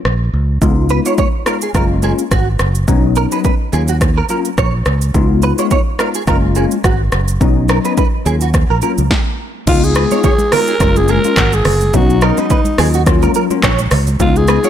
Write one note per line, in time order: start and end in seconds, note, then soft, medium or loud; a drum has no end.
0.05 0.29 A#1 medium
0.05 cross-stick medium
0.33 0.57 C#2 medium
0.62 0.99 C#2 loud
0.62 1.02 G#3 loud
0.62 1.02 B3 medium
0.62 1.02 D#4 medium
0.62 1.02 F4 loud
0.62 kick loud
0.62 shaker medium
0.89 0.99 B4 medium
0.89 shaker soft
1.05 1.22 G#3 medium
1.05 1.23 B3 medium
1.05 1.23 D#4 medium
1.05 1.23 F4 medium
1.05 1.13 C#5 medium
1.05 shaker medium
1.18 1.27 C#5 medium
1.18 kick medium
1.18 shaker medium
1.46 1.66 G#3 medium
1.46 1.66 B3 medium
1.46 1.66 D#4 medium
1.46 1.66 F4 medium
1.46 1.55 A#4 medium
1.46 cross-stick medium
1.46 shaker medium
1.62 1.69 G#4 medium
1.62 shaker medium
1.74 2.12 F#1 loud
1.74 2.01 G#3 medium
1.74 2.01 A#3 medium
1.74 2.01 C#4 medium
1.74 2.01 F4 loud
1.74 1.84 A#4 medium
1.74 kick loud
1.74 cross-stick medium
1.74 shaker medium
2.02 2.22 G#3 medium
2.02 2.22 A#3 medium
2.02 2.22 C#4 medium
2.02 2.22 F4 medium
2.02 2.12 G#4 medium
2.02 shaker medium
2.19 shaker medium
2.31 2.55 G#1 medium
2.31 2.47 F#4 medium
2.31 kick loud
2.31 cross-stick medium
2.31 shaker medium
2.59 2.84 F#1 medium
2.59 cross-stick medium
2.59 shaker medium
2.75 shaker medium
2.88 3.25 B1 loud
2.88 3.28 F#3 loud
2.88 3.28 B3 medium
2.88 3.28 C#4 medium
2.88 3.28 D#4 loud
2.88 kick loud
2.88 shaker medium
3.16 3.25 A#4 medium
3.16 shaker soft
3.32 3.49 F#3 medium
3.32 3.49 B3 medium
3.32 3.49 C#4 medium
3.32 3.49 D#4 medium
3.32 3.39 B4 medium
3.32 shaker medium
3.44 3.53 B4 medium
3.44 kick medium
3.44 shaker medium
3.73 4.21 D#2 medium
3.73 3.92 F#3 medium
3.73 3.92 A#3 medium
3.73 3.92 C#4 medium
3.73 3.92 F4 medium
3.73 3.82 G#4 medium
3.73 shaker medium
3.88 3.96 F#4 medium
3.88 shaker medium
4.01 kick loud
4.01 cross-stick medium
4.01 shaker medium
4.18 4.24 A#4 medium
4.29 4.49 F#3 medium
4.29 4.49 A#3 medium
4.29 4.49 C#4 medium
4.29 4.49 F4 medium
4.29 4.39 A#4 medium
4.29 shaker medium
4.45 shaker medium
4.58 4.82 A#1 medium
4.58 4.74 C#5 medium
4.58 kick loud
4.58 cross-stick medium
4.58 shaker medium
4.86 5.10 C#2 medium
4.86 cross-stick medium
4.86 shaker medium
5.02 shaker medium
5.14 5.52 C#2 loud
5.14 5.55 G#3 medium
5.14 5.55 B3 medium
5.14 5.55 D#4 medium
5.14 5.55 F4 loud
5.14 kick loud
5.14 shaker medium
5.42 5.52 B4 medium
5.42 shaker soft
5.58 5.75 G#3 medium
5.58 5.75 B3 medium
5.58 5.75 D#4 medium
5.58 5.76 F4 medium
5.58 5.66 C#5 medium
5.58 shaker medium
5.71 5.80 C#5 medium
5.71 kick medium
5.71 shaker medium
5.99 6.18 G#3 medium
5.99 6.19 B3 medium
5.99 6.19 D#4 medium
5.99 6.19 F4 medium
5.99 6.08 A#4 medium
5.99 cross-stick medium
5.99 shaker medium
6.14 6.22 G#4 medium
6.14 shaker medium
6.27 6.65 F#1 loud
6.27 6.54 G#3 medium
6.27 6.54 A#3 medium
6.27 6.54 C#4 medium
6.27 6.54 F4 loud
6.27 6.36 A#4 medium
6.27 kick loud
6.27 cross-stick medium
6.27 shaker medium
6.55 6.75 G#3 medium
6.55 6.75 A#3 medium
6.55 6.75 C#4 medium
6.55 6.75 F4 medium
6.55 6.65 G#4 medium
6.55 shaker medium
6.71 shaker medium
6.84 7.08 G#1 medium
6.84 7.00 F#4 medium
6.84 kick loud
6.84 cross-stick medium
6.84 shaker medium
7.12 7.37 F#1 medium
7.12 cross-stick medium
7.12 shaker medium
7.28 shaker medium
7.41 7.78 B1 loud
7.41 7.81 F#3 loud
7.41 7.81 B3 medium
7.41 7.81 C#4 medium
7.41 7.81 D#4 loud
7.41 kick loud
7.41 shaker medium
7.68 7.78 A#4 medium
7.68 cross-stick medium
7.68 shaker soft
7.84 8.02 F#3 medium
7.84 8.02 B3 medium
7.84 8.02 C#4 medium
7.84 8.02 D#4 medium
7.84 7.92 B4 medium
7.84 shaker medium
7.97 8.06 B4 medium
7.97 kick medium
7.97 shaker medium
8.25 8.63 D#2 loud
8.25 8.45 F#3 medium
8.25 8.45 A#3 medium
8.25 8.45 C#4 medium
8.25 8.45 F4 medium
8.25 8.35 G#4 medium
8.25 shaker medium
8.41 8.49 F#4 medium
8.41 shaker medium
8.54 kick loud
8.54 cross-stick medium
8.54 shaker medium
8.70 8.81 A#1 medium
8.70 8.77 A#4 medium
8.82 9.01 F#3 medium
8.82 9.02 A#3 medium
8.82 9.02 C#4 medium
8.82 9.02 F4 medium
8.82 8.91 A#4 medium
8.82 shaker medium
8.98 9.09 C#2 medium
8.98 shaker medium
9.11 kick loud
9.11 snare medium
9.67 10.04 C#2 loud
9.67 10.07 G#3 loud
9.67 10.07 B3 medium
9.67 10.08 D#4 medium
9.67 10.08 F4 loud
9.67 9.86 F4 loud
9.67 kick loud
9.67 crash loud
9.67 low conga medium
9.67 shaker medium
9.83 10.25 G#4 loud
9.83 shaker medium
9.95 10.04 B4 medium
9.95 cross-stick medium
9.95 shaker medium
10.11 10.28 G#3 medium
10.11 10.28 B3 medium
10.11 10.28 D#4 medium
10.11 10.28 F4 medium
10.11 10.18 C#5 medium
10.11 high conga medium
10.11 shaker medium
10.24 10.55 G#4 loud
10.24 10.33 C#5 medium
10.24 kick loud
10.24 low conga medium
10.24 shaker medium
10.38 high conga medium
10.38 shaker medium
10.52 10.71 G#3 medium
10.52 10.71 B3 medium
10.52 10.71 D#4 medium
10.52 10.72 F4 medium
10.52 10.61 A#4 medium
10.52 10.99 A#4 loud
10.52 cross-stick medium
10.52 open hi-hat medium
10.52 low conga medium
10.52 shaker medium
10.67 10.75 G#4 medium
10.67 shaker medium
10.80 11.18 F#1 loud
10.80 11.21 G#3 loud
10.80 11.21 A#3 medium
10.80 11.21 C#4 medium
10.80 11.21 F4 loud
10.80 10.89 A#4 medium
10.80 kick loud
10.80 cross-stick medium
10.80 shaker medium
10.96 11.12 G#4 loud
10.96 high conga medium
10.96 shaker soft
11.08 11.18 G#4 medium
11.08 11.56 A#4 loud
11.08 shaker medium
11.24 11.41 G#3 medium
11.24 11.41 A#3 medium
11.24 11.42 C#4 medium
11.24 11.42 F4 medium
11.24 high conga medium
11.24 shaker medium
11.37 11.61 G#1 medium
11.37 11.53 F#4 medium
11.37 kick loud
11.37 cross-stick medium
11.37 clap medium
11.37 shaker medium
11.52 11.97 G#4 loud
11.52 high conga medium
11.52 shaker medium
11.65 11.89 F#1 medium
11.65 cross-stick medium
11.65 open hi-hat medium
11.65 low conga medium
11.65 shaker medium
11.81 high conga medium
11.81 shaker medium
11.93 12.31 B1 loud
11.93 12.34 F#3 loud
11.93 12.34 B3 medium
11.93 12.34 C#4 medium
11.93 12.34 D#4 loud
11.93 12.25 F#4 loud
11.93 kick loud
11.93 low conga medium
11.93 shaker medium
12.10 shaker medium
12.21 13.08 D#4 medium
12.21 12.38 A#4 medium
12.21 cross-stick medium
12.21 shaker soft
12.37 12.55 F#3 medium
12.37 12.55 B3 medium
12.37 12.55 C#4 medium
12.37 12.55 D#4 medium
12.37 12.45 B4 medium
12.37 high conga medium
12.37 shaker medium
12.50 12.59 B4 medium
12.50 kick medium
12.50 low conga medium
12.50 shaker medium
12.65 high conga medium
12.65 shaker medium
12.78 13.27 D#2 loud
12.78 12.98 F#3 medium
12.78 12.98 A#3 medium
12.78 12.98 C#4 medium
12.78 12.98 F4 medium
12.78 12.88 G#4 medium
12.78 cross-stick medium
12.78 open hi-hat medium
12.78 low conga medium
12.78 shaker medium
12.94 13.01 F#4 medium
12.94 shaker medium
13.06 13.47 F#3 medium
13.06 13.47 A#3 medium
13.06 13.47 C#4 medium
13.06 13.47 F4 loud
13.06 kick loud
13.06 cross-stick medium
13.06 shaker medium
13.22 13.30 A#4 medium
13.22 high conga medium
13.22 shaker soft
13.34 13.44 A#4 medium
13.34 shaker medium
13.50 13.68 F#3 medium
13.50 13.68 A#3 medium
13.50 13.68 C#4 medium
13.50 13.68 F4 medium
13.50 high conga medium
13.50 shaker medium
13.63 13.87 A#1 medium
13.63 13.79 C#5 medium
13.63 kick loud
13.63 cross-stick medium
13.63 clap medium
13.63 shaker medium
13.79 high conga medium
13.79 shaker medium
13.91 14.16 C#2 medium
13.91 cross-stick medium
13.91 open hi-hat medium
13.91 low conga medium
13.91 shaker medium
14.07 high conga medium
14.07 shaker medium
14.20 14.57 C#2 loud
14.20 14.60 G#3 loud
14.20 14.60 B3 medium
14.20 14.60 D#4 medium
14.20 14.60 F4 loud
14.20 14.39 F4 loud
14.20 kick loud
14.20 low conga medium
14.20 shaker medium
14.36 14.70 G#4 loud
14.36 shaker medium
14.47 14.57 B4 medium
14.47 cross-stick medium
14.47 shaker medium
14.64 14.70 G#3 medium
14.64 14.70 B3 medium
14.64 14.70 D#4 medium
14.64 14.70 F4 medium
14.64 14.70 C#5 medium
14.64 high conga medium
14.64 shaker medium